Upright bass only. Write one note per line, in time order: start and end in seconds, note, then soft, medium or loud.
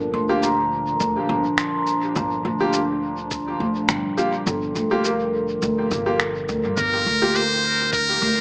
0.00 0.11 G1 medium
0.14 0.98 D2 medium
1.00 1.14 D2 medium
1.29 1.43 G1 medium
2.16 2.42 G1 loud
2.45 3.58 D2 medium
3.60 3.86 D2 medium
3.89 4.03 G1 medium
4.47 4.72 G1 loud
4.75 5.59 D2 medium
5.62 5.93 D2 medium
5.91 6.46 G1 loud
6.49 6.63 D2 loud
6.65 6.76 G2 medium
6.78 7.03 G1 loud
7.06 8.19 D2 medium
8.22 8.41 D2 medium